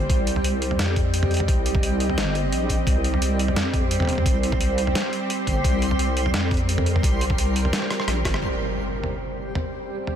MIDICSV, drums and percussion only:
0, 0, Header, 1, 2, 480
1, 0, Start_track
1, 0, Key_signature, -3, "minor"
1, 0, Tempo, 346821
1, 134, Time_signature, 4, 2, 24, 8
1, 14057, End_track
2, 0, Start_track
2, 0, Title_t, "Drums"
2, 133, Note_on_c, 9, 36, 125
2, 136, Note_on_c, 9, 42, 77
2, 271, Note_off_c, 9, 36, 0
2, 275, Note_off_c, 9, 42, 0
2, 375, Note_on_c, 9, 42, 65
2, 502, Note_on_c, 9, 45, 35
2, 513, Note_off_c, 9, 42, 0
2, 615, Note_on_c, 9, 42, 80
2, 640, Note_off_c, 9, 45, 0
2, 753, Note_off_c, 9, 42, 0
2, 857, Note_on_c, 9, 42, 63
2, 983, Note_on_c, 9, 45, 34
2, 995, Note_off_c, 9, 42, 0
2, 1096, Note_on_c, 9, 38, 120
2, 1096, Note_on_c, 9, 42, 82
2, 1121, Note_off_c, 9, 45, 0
2, 1234, Note_off_c, 9, 38, 0
2, 1234, Note_off_c, 9, 42, 0
2, 1333, Note_on_c, 9, 36, 107
2, 1335, Note_on_c, 9, 42, 36
2, 1471, Note_off_c, 9, 36, 0
2, 1474, Note_off_c, 9, 42, 0
2, 1573, Note_on_c, 9, 42, 78
2, 1699, Note_on_c, 9, 45, 77
2, 1711, Note_off_c, 9, 42, 0
2, 1811, Note_on_c, 9, 42, 28
2, 1837, Note_off_c, 9, 45, 0
2, 1856, Note_off_c, 9, 42, 0
2, 1856, Note_on_c, 9, 42, 41
2, 1893, Note_off_c, 9, 42, 0
2, 1893, Note_on_c, 9, 42, 52
2, 1940, Note_on_c, 9, 45, 59
2, 2032, Note_off_c, 9, 42, 0
2, 2052, Note_on_c, 9, 36, 126
2, 2056, Note_on_c, 9, 42, 74
2, 2078, Note_off_c, 9, 45, 0
2, 2190, Note_off_c, 9, 36, 0
2, 2194, Note_off_c, 9, 42, 0
2, 2294, Note_on_c, 9, 42, 61
2, 2417, Note_on_c, 9, 36, 106
2, 2424, Note_on_c, 9, 45, 32
2, 2433, Note_off_c, 9, 42, 0
2, 2534, Note_on_c, 9, 42, 78
2, 2555, Note_off_c, 9, 36, 0
2, 2563, Note_off_c, 9, 45, 0
2, 2673, Note_off_c, 9, 42, 0
2, 2772, Note_on_c, 9, 42, 58
2, 2900, Note_on_c, 9, 45, 34
2, 2911, Note_off_c, 9, 42, 0
2, 3014, Note_on_c, 9, 38, 115
2, 3014, Note_on_c, 9, 42, 77
2, 3038, Note_off_c, 9, 45, 0
2, 3152, Note_off_c, 9, 38, 0
2, 3152, Note_off_c, 9, 42, 0
2, 3254, Note_on_c, 9, 42, 35
2, 3392, Note_off_c, 9, 42, 0
2, 3495, Note_on_c, 9, 42, 77
2, 3633, Note_off_c, 9, 42, 0
2, 3729, Note_on_c, 9, 36, 60
2, 3734, Note_on_c, 9, 42, 63
2, 3868, Note_off_c, 9, 36, 0
2, 3872, Note_off_c, 9, 42, 0
2, 3969, Note_on_c, 9, 36, 117
2, 3976, Note_on_c, 9, 42, 72
2, 4108, Note_off_c, 9, 36, 0
2, 4115, Note_off_c, 9, 42, 0
2, 4213, Note_on_c, 9, 42, 61
2, 4342, Note_on_c, 9, 45, 33
2, 4352, Note_off_c, 9, 42, 0
2, 4455, Note_on_c, 9, 42, 78
2, 4480, Note_off_c, 9, 45, 0
2, 4593, Note_off_c, 9, 42, 0
2, 4698, Note_on_c, 9, 42, 58
2, 4821, Note_on_c, 9, 45, 32
2, 4836, Note_off_c, 9, 42, 0
2, 4933, Note_on_c, 9, 38, 112
2, 4933, Note_on_c, 9, 42, 71
2, 4960, Note_off_c, 9, 45, 0
2, 5071, Note_off_c, 9, 38, 0
2, 5071, Note_off_c, 9, 42, 0
2, 5170, Note_on_c, 9, 36, 101
2, 5172, Note_on_c, 9, 42, 35
2, 5308, Note_off_c, 9, 36, 0
2, 5310, Note_off_c, 9, 42, 0
2, 5411, Note_on_c, 9, 42, 77
2, 5537, Note_on_c, 9, 45, 72
2, 5550, Note_off_c, 9, 42, 0
2, 5569, Note_off_c, 9, 45, 0
2, 5569, Note_on_c, 9, 45, 58
2, 5605, Note_off_c, 9, 45, 0
2, 5605, Note_on_c, 9, 45, 47
2, 5640, Note_off_c, 9, 45, 0
2, 5640, Note_on_c, 9, 45, 39
2, 5656, Note_on_c, 9, 42, 61
2, 5673, Note_off_c, 9, 45, 0
2, 5673, Note_on_c, 9, 45, 31
2, 5712, Note_off_c, 9, 45, 0
2, 5712, Note_on_c, 9, 45, 26
2, 5749, Note_off_c, 9, 45, 0
2, 5749, Note_on_c, 9, 45, 22
2, 5784, Note_off_c, 9, 45, 0
2, 5784, Note_on_c, 9, 45, 56
2, 5795, Note_off_c, 9, 42, 0
2, 5892, Note_on_c, 9, 36, 113
2, 5897, Note_on_c, 9, 42, 72
2, 5922, Note_off_c, 9, 45, 0
2, 6031, Note_off_c, 9, 36, 0
2, 6035, Note_off_c, 9, 42, 0
2, 6137, Note_on_c, 9, 42, 62
2, 6260, Note_on_c, 9, 36, 100
2, 6263, Note_on_c, 9, 45, 36
2, 6275, Note_off_c, 9, 42, 0
2, 6374, Note_on_c, 9, 42, 74
2, 6399, Note_off_c, 9, 36, 0
2, 6401, Note_off_c, 9, 45, 0
2, 6513, Note_off_c, 9, 42, 0
2, 6616, Note_on_c, 9, 42, 59
2, 6744, Note_on_c, 9, 45, 36
2, 6754, Note_off_c, 9, 42, 0
2, 6856, Note_on_c, 9, 38, 111
2, 6856, Note_on_c, 9, 42, 74
2, 6882, Note_off_c, 9, 45, 0
2, 6994, Note_off_c, 9, 38, 0
2, 6994, Note_off_c, 9, 42, 0
2, 7097, Note_on_c, 9, 42, 35
2, 7236, Note_off_c, 9, 42, 0
2, 7335, Note_on_c, 9, 42, 77
2, 7474, Note_off_c, 9, 42, 0
2, 7572, Note_on_c, 9, 36, 58
2, 7576, Note_on_c, 9, 42, 60
2, 7710, Note_off_c, 9, 36, 0
2, 7714, Note_off_c, 9, 42, 0
2, 7812, Note_on_c, 9, 36, 113
2, 7816, Note_on_c, 9, 42, 75
2, 7950, Note_off_c, 9, 36, 0
2, 7954, Note_off_c, 9, 42, 0
2, 8056, Note_on_c, 9, 42, 61
2, 8182, Note_on_c, 9, 45, 37
2, 8194, Note_off_c, 9, 42, 0
2, 8294, Note_on_c, 9, 42, 76
2, 8320, Note_off_c, 9, 45, 0
2, 8433, Note_off_c, 9, 42, 0
2, 8536, Note_on_c, 9, 42, 61
2, 8662, Note_on_c, 9, 45, 37
2, 8674, Note_off_c, 9, 42, 0
2, 8772, Note_on_c, 9, 38, 112
2, 8772, Note_on_c, 9, 42, 76
2, 8801, Note_off_c, 9, 45, 0
2, 8911, Note_off_c, 9, 38, 0
2, 8911, Note_off_c, 9, 42, 0
2, 9013, Note_on_c, 9, 36, 97
2, 9014, Note_on_c, 9, 42, 17
2, 9052, Note_off_c, 9, 42, 0
2, 9052, Note_on_c, 9, 42, 22
2, 9094, Note_off_c, 9, 42, 0
2, 9094, Note_on_c, 9, 42, 28
2, 9151, Note_off_c, 9, 36, 0
2, 9232, Note_off_c, 9, 42, 0
2, 9257, Note_on_c, 9, 42, 75
2, 9384, Note_on_c, 9, 45, 84
2, 9395, Note_off_c, 9, 42, 0
2, 9499, Note_on_c, 9, 42, 64
2, 9522, Note_off_c, 9, 45, 0
2, 9629, Note_on_c, 9, 45, 63
2, 9637, Note_off_c, 9, 42, 0
2, 9734, Note_on_c, 9, 36, 116
2, 9744, Note_on_c, 9, 42, 78
2, 9768, Note_off_c, 9, 45, 0
2, 9872, Note_off_c, 9, 36, 0
2, 9882, Note_off_c, 9, 42, 0
2, 9982, Note_on_c, 9, 42, 64
2, 10102, Note_on_c, 9, 36, 102
2, 10108, Note_on_c, 9, 45, 37
2, 10120, Note_off_c, 9, 42, 0
2, 10219, Note_on_c, 9, 42, 80
2, 10240, Note_off_c, 9, 36, 0
2, 10247, Note_off_c, 9, 45, 0
2, 10358, Note_off_c, 9, 42, 0
2, 10462, Note_on_c, 9, 42, 63
2, 10587, Note_on_c, 9, 45, 37
2, 10600, Note_off_c, 9, 42, 0
2, 10699, Note_on_c, 9, 37, 60
2, 10699, Note_on_c, 9, 38, 111
2, 10699, Note_on_c, 9, 42, 81
2, 10726, Note_off_c, 9, 45, 0
2, 10825, Note_off_c, 9, 37, 0
2, 10825, Note_on_c, 9, 37, 57
2, 10837, Note_off_c, 9, 38, 0
2, 10837, Note_off_c, 9, 42, 0
2, 10940, Note_off_c, 9, 37, 0
2, 10940, Note_on_c, 9, 37, 74
2, 10940, Note_on_c, 9, 42, 37
2, 11067, Note_off_c, 9, 37, 0
2, 11067, Note_on_c, 9, 37, 67
2, 11079, Note_off_c, 9, 42, 0
2, 11181, Note_off_c, 9, 37, 0
2, 11181, Note_on_c, 9, 37, 85
2, 11181, Note_on_c, 9, 42, 81
2, 11319, Note_off_c, 9, 37, 0
2, 11319, Note_off_c, 9, 42, 0
2, 11415, Note_on_c, 9, 36, 58
2, 11422, Note_on_c, 9, 37, 96
2, 11422, Note_on_c, 9, 42, 67
2, 11544, Note_off_c, 9, 37, 0
2, 11544, Note_on_c, 9, 37, 90
2, 11554, Note_off_c, 9, 36, 0
2, 11561, Note_off_c, 9, 42, 0
2, 11682, Note_off_c, 9, 37, 0
2, 12505, Note_on_c, 9, 45, 35
2, 12643, Note_off_c, 9, 45, 0
2, 13222, Note_on_c, 9, 45, 76
2, 13361, Note_off_c, 9, 45, 0
2, 13942, Note_on_c, 9, 45, 34
2, 14057, Note_off_c, 9, 45, 0
2, 14057, End_track
0, 0, End_of_file